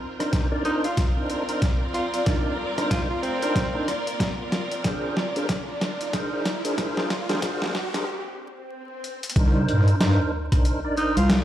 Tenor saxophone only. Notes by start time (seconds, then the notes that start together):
0.65 D#4
0.84 F4
1.94 F4
2.13 F4
2.91 F4
3.10 F4
3.23 C4
10.97 D#4
11.17 F4